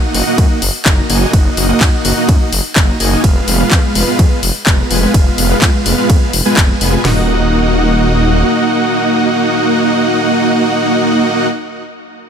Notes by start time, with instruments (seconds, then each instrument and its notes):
Already playing: supersaw synth A#3 D#4 F#4 D#5 F#5
0.14 detuned saw bass F#1, open hi-hat
0.26 supersaw synth A#3 D#4 F#4 D#5 F#5
0.38 detuned saw bass F#2, kick, ride
0.62 detuned saw bass F#1, open hi-hat
0.86 detuned saw bass F#1, supersaw synth A#3 D#4 F#4 D#5 A#5, kick, clap, ride
1.10 detuned saw bass F#1, supersaw synth A#3 D#4 F#4 D#5 G#5, open hi-hat
1.21 supersaw synth A#3 D#4 F#4 D#5 G#5
1.33 detuned saw bass F#1, supersaw synth A#3 D#4 F#4 D#5 F#5, kick, ride
1.57 detuned saw bass F#1, open hi-hat
1.69 supersaw synth A#3 D#4 F#4 D#5 F#5
1.81 detuned saw bass F#2, kick, clap, ride
2.05 detuned saw bass F#1, open hi-hat
2.17 supersaw synth A#3 D#4 F#4 D#5 F#5
2.29 detuned saw bass F#2, kick, ride
2.52 detuned saw bass F#1, open hi-hat
2.76 detuned saw bass F#1, supersaw synth A#3 D#4 F#4 D#5 A#5, kick, clap, ride
3.00 detuned saw bass F#1, supersaw synth A#3 D#4 F#4 D#5 G#5, open hi-hat
3.12 supersaw synth A#3 D#4 F#4 D#5 G#5
3.24 detuned saw bass F1, supersaw synth G#3 B3 F4 B4, kick, ride
3.48 detuned saw bass F1, open hi-hat
3.60 supersaw synth G#3 B3 F4 B4 F5
3.71 detuned saw bass F2, kick, clap, ride
3.95 detuned saw bass F1, open hi-hat
4.07 supersaw synth G#3 B3 F4 B4 F5
4.19 detuned saw bass F2, kick, ride
4.43 detuned saw bass F1, open hi-hat
4.67 detuned saw bass F1, supersaw synth G#3 B3 F4 B4 A#5, kick, clap, ride
4.91 detuned saw bass F1, supersaw synth G#3 B3 F4 B4 G#5, open hi-hat
5.02 supersaw synth G#3 B3 F4 B4 G#5
5.14 detuned saw bass F1, supersaw synth G#3 B3 F4 B4, kick, ride
5.38 detuned saw bass F1, open hi-hat
5.50 supersaw synth G#3 B3 F4 B4 F5
5.62 detuned saw bass F2, kick, clap, ride
5.86 detuned saw bass F1, open hi-hat
5.98 supersaw synth G#3 B3 F4 B4 F5
6.10 detuned saw bass F2, kick, ride
6.33 detuned saw bass F1, open hi-hat
6.45 supersaw synth G#3 B3 F4 B4 G#5
6.57 detuned saw bass F1, kick, clap, ride
6.81 detuned saw bass F1, supersaw synth G#3 B3 F4 B4 G#5, open hi-hat
7.05 detuned saw bass D#1, supersaw synth A#3 D#4 F#4 D#5 F#5, snare, floor tom, open hi-hat